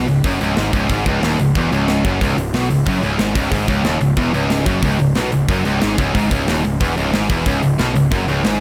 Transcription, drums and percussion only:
0.08 open hi-hat
0.24 kick, open hi-hat
0.41 open hi-hat
0.57 snare, open hi-hat
0.73 kick, open hi-hat
0.89 kick, open hi-hat
1.06 kick, open hi-hat
1.23 snare, open hi-hat
1.39 open hi-hat
1.55 kick, open hi-hat
1.72 open hi-hat
1.88 snare, open hi-hat
2.05 kick, open hi-hat
2.21 kick, open hi-hat
2.38 open hi-hat
2.54 snare, open hi-hat
2.70 open hi-hat
2.87 kick, open hi-hat
3.03 open hi-hat
3.19 snare, open hi-hat
3.35 kick, open hi-hat
3.52 kick, open hi-hat
3.68 kick, open hi-hat
3.85 snare, open hi-hat
4.01 open hi-hat
4.17 kick, open hi-hat
4.34 open hi-hat
4.50 snare, open hi-hat
4.66 kick, open hi-hat
4.82 kick, open hi-hat
4.99 open hi-hat
5.15 snare, open hi-hat
5.32 open hi-hat
5.49 kick, open hi-hat
5.65 open hi-hat
5.81 snare, open hi-hat
5.98 kick, open hi-hat
6.15 kick, open hi-hat
6.31 kick, open hi-hat
6.48 snare, open hi-hat
6.65 open hi-hat
6.81 kick, open hi-hat
6.98 open hi-hat
7.13 snare, open hi-hat
7.30 kick, open hi-hat
7.46 kick, open hi-hat
7.63 open hi-hat
7.79 snare, open hi-hat
7.96 open hi-hat
8.12 kick, open hi-hat
8.28 open hi-hat
8.45 snare, open hi-hat

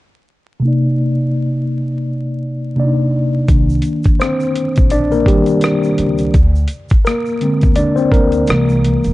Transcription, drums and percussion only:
3.48 kick, closed hi-hat, shaker
3.69 shaker
3.82 closed hi-hat, shaker
4.03 kick, closed hi-hat, shaker
4.21 cross-stick, closed hi-hat, shaker
4.40 shaker
4.55 closed hi-hat
4.76 kick, closed hi-hat, shaker
4.90 closed hi-hat, shaker
5.12 shaker
5.26 kick, closed hi-hat
5.46 closed hi-hat, shaker
5.61 cross-stick, closed hi-hat, shaker
5.83 shaker
5.98 closed hi-hat
6.18 closed hi-hat, shaker
6.34 kick, closed hi-hat, shaker
6.55 shaker
6.68 closed hi-hat, shaker
6.89 kick, closed hi-hat, shaker
7.06 cross-stick, closed hi-hat, shaker
7.26 shaker
7.41 closed hi-hat
7.61 kick, closed hi-hat, shaker
7.76 closed hi-hat, shaker
7.97 shaker
8.12 kick, closed hi-hat
8.32 closed hi-hat, shaker
8.47 cross-stick, closed hi-hat, shaker
8.69 shaker
8.84 closed hi-hat
9.04 closed hi-hat, shaker

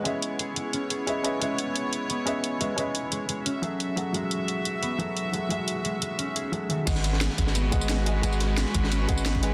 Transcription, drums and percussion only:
0.05 closed hi-hat
0.22 closed hi-hat
0.39 closed hi-hat
0.56 closed hi-hat
0.73 closed hi-hat
0.90 closed hi-hat
1.07 closed hi-hat
1.24 closed hi-hat
1.42 closed hi-hat
1.58 closed hi-hat
1.76 closed hi-hat
1.93 closed hi-hat
2.10 closed hi-hat
2.27 closed hi-hat
2.44 closed hi-hat
2.61 closed hi-hat
2.78 closed hi-hat
2.95 closed hi-hat
3.12 closed hi-hat
3.29 closed hi-hat
3.46 closed hi-hat
3.63 closed hi-hat
3.80 closed hi-hat
3.97 closed hi-hat
4.14 closed hi-hat
4.31 closed hi-hat
4.48 closed hi-hat
4.65 closed hi-hat
4.83 closed hi-hat
5.00 closed hi-hat
5.17 closed hi-hat
5.34 closed hi-hat
5.50 closed hi-hat
5.68 closed hi-hat
5.85 closed hi-hat
6.02 closed hi-hat
6.19 closed hi-hat
6.36 closed hi-hat
6.53 closed hi-hat
6.70 closed hi-hat
6.87 kick, closed hi-hat, crash, ride, tambourine
6.96 snare, tambourine
7.04 closed hi-hat, ride, tambourine
7.13 snare
7.21 snare, closed hi-hat, ride, tambourine
7.30 snare
7.38 kick, closed hi-hat, ride
7.47 snare
7.55 closed hi-hat, ride, tambourine
7.72 kick, closed hi-hat, ride, tambourine
7.81 cross-stick, tambourine
7.89 snare, closed hi-hat, ride, tambourine
8.06 closed hi-hat, ride
8.23 closed hi-hat, ride, tambourine
8.32 ride, tambourine
8.40 cross-stick, snare, closed hi-hat, ride, tambourine
8.57 snare, closed hi-hat, ride, tambourine
8.66 snare
8.74 kick, closed hi-hat, ride
8.84 cross-stick, snare
8.91 closed hi-hat, ride, tambourine
9.09 kick, closed hi-hat, ride, tambourine
9.18 tambourine
9.26 snare, closed hi-hat, ride, tambourine
9.35 kick
9.43 closed hi-hat, ride

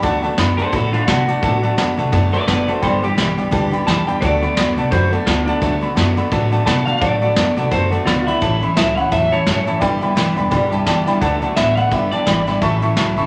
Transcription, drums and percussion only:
0.03 kick, closed hi-hat
0.24 closed hi-hat
0.38 snare, closed hi-hat
0.59 closed hi-hat
0.73 kick, closed hi-hat
0.94 closed hi-hat
1.08 kick, snare, closed hi-hat
1.28 closed hi-hat
1.42 kick, closed hi-hat
1.63 closed hi-hat
1.78 snare, closed hi-hat
1.99 closed hi-hat
2.13 kick, closed hi-hat
2.33 closed hi-hat
2.48 kick, snare, closed hi-hat
2.68 closed hi-hat
2.83 kick, closed hi-hat
3.03 closed hi-hat
3.18 snare, closed hi-hat
3.38 closed hi-hat
3.52 kick, closed hi-hat
3.73 closed hi-hat
3.87 kick, snare, closed hi-hat
4.08 closed hi-hat
4.22 kick, closed hi-hat
4.42 closed hi-hat
4.57 snare, closed hi-hat
4.78 closed hi-hat
4.92 kick, closed hi-hat
5.13 closed hi-hat
5.27 kick, snare, closed hi-hat
5.47 closed hi-hat
5.62 kick, closed hi-hat
5.82 closed hi-hat
5.97 snare, closed hi-hat
6.17 closed hi-hat
6.32 kick, closed hi-hat
6.52 closed hi-hat
6.67 kick, snare, closed hi-hat
6.87 closed hi-hat
7.02 kick, closed hi-hat
7.22 closed hi-hat
7.36 snare, closed hi-hat
7.57 closed hi-hat
7.72 kick, closed hi-hat
7.92 closed hi-hat
8.07 kick, snare, closed hi-hat
8.28 closed hi-hat
8.42 kick, closed hi-hat
8.62 closed hi-hat
8.77 snare, closed hi-hat
8.97 closed hi-hat
9.12 kick, closed hi-hat
9.33 closed hi-hat
9.47 kick, snare, closed hi-hat
9.67 closed hi-hat
9.82 kick, closed hi-hat
10.02 closed hi-hat
10.17 snare, closed hi-hat
10.37 closed hi-hat
10.52 kick, closed hi-hat
10.72 closed hi-hat
10.87 kick, snare, closed hi-hat
11.07 snare, closed hi-hat
11.22 kick, closed hi-hat
11.42 closed hi-hat
11.56 snare, closed hi-hat
11.77 closed hi-hat
11.91 kick, closed hi-hat
12.12 closed hi-hat
12.27 kick, snare, closed hi-hat
12.47 snare, closed hi-hat
12.61 kick, closed hi-hat
12.82 closed hi-hat
12.97 snare, closed hi-hat
13.17 closed hi-hat

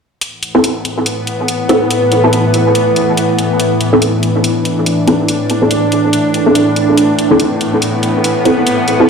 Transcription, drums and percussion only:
0.21 closed hi-hat
0.43 closed hi-hat
0.64 closed hi-hat
0.85 closed hi-hat
1.06 closed hi-hat
1.27 closed hi-hat
1.48 closed hi-hat
1.69 closed hi-hat
1.91 closed hi-hat
2.12 closed hi-hat
2.33 closed hi-hat
2.54 closed hi-hat
2.75 closed hi-hat
2.96 closed hi-hat
3.17 closed hi-hat
3.39 closed hi-hat
3.60 closed hi-hat
3.81 closed hi-hat
4.02 closed hi-hat
4.23 closed hi-hat
4.44 closed hi-hat
4.65 closed hi-hat
4.86 closed hi-hat
5.07 closed hi-hat
5.28 closed hi-hat
5.50 closed hi-hat
5.71 closed hi-hat
5.92 closed hi-hat
6.13 closed hi-hat
6.34 closed hi-hat
6.55 closed hi-hat
6.76 closed hi-hat
6.97 closed hi-hat
7.19 closed hi-hat
7.40 closed hi-hat
7.61 closed hi-hat
7.82 closed hi-hat
8.03 closed hi-hat
8.24 closed hi-hat
8.45 closed hi-hat
8.67 closed hi-hat
8.88 closed hi-hat

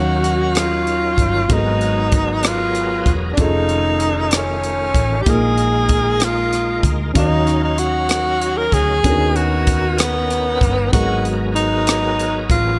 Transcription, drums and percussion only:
0.24 closed hi-hat
0.55 cross-stick, closed hi-hat
0.87 closed hi-hat
1.18 kick, closed hi-hat
1.50 kick, closed hi-hat
1.81 closed hi-hat
2.12 kick, closed hi-hat
2.43 cross-stick, closed hi-hat
2.75 closed hi-hat
3.06 kick, closed hi-hat
3.37 kick, closed hi-hat
3.69 closed hi-hat
4.00 closed hi-hat
4.31 cross-stick, closed hi-hat
4.64 closed hi-hat
4.94 kick, closed hi-hat
5.26 kick, closed hi-hat
5.58 closed hi-hat
5.89 kick, closed hi-hat
6.20 cross-stick, closed hi-hat
6.53 cross-stick, closed hi-hat
6.83 kick, closed hi-hat
7.15 kick, closed hi-hat
7.47 cross-stick, closed hi-hat
7.78 closed hi-hat
8.09 cross-stick, closed hi-hat
8.42 closed hi-hat
8.72 kick, closed hi-hat
9.04 kick, closed hi-hat
9.36 closed hi-hat
9.67 kick, closed hi-hat
9.98 cross-stick, closed hi-hat
10.30 cross-stick, closed hi-hat
10.61 kick, closed hi-hat
10.93 kick, closed hi-hat
11.25 closed hi-hat
11.56 closed hi-hat
11.87 cross-stick, closed hi-hat
12.19 closed hi-hat
12.50 kick, closed hi-hat

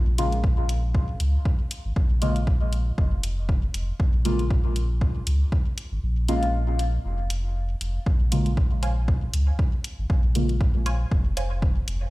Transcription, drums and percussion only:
0.18 closed hi-hat
0.32 closed hi-hat
0.44 kick
0.69 closed hi-hat
0.95 kick
1.20 closed hi-hat
1.45 kick
1.71 closed hi-hat
1.96 kick
2.22 closed hi-hat
2.36 closed hi-hat
2.47 kick
2.73 closed hi-hat
2.98 kick
3.23 closed hi-hat
3.49 kick
3.74 closed hi-hat
4.00 kick
4.25 closed hi-hat
4.39 closed hi-hat
4.51 kick
4.76 closed hi-hat
5.01 kick
5.27 closed hi-hat
5.52 kick
5.78 closed hi-hat
6.29 closed hi-hat
6.43 closed hi-hat
6.79 closed hi-hat
7.30 closed hi-hat
7.81 closed hi-hat
8.06 kick
8.32 closed hi-hat
8.46 closed hi-hat
8.57 kick
8.83 closed hi-hat
9.08 kick
9.34 closed hi-hat
9.59 kick
9.84 closed hi-hat
10.10 kick
10.35 closed hi-hat
10.49 closed hi-hat
10.61 kick
10.86 closed hi-hat
11.12 kick
11.37 closed hi-hat
11.62 kick
11.88 closed hi-hat

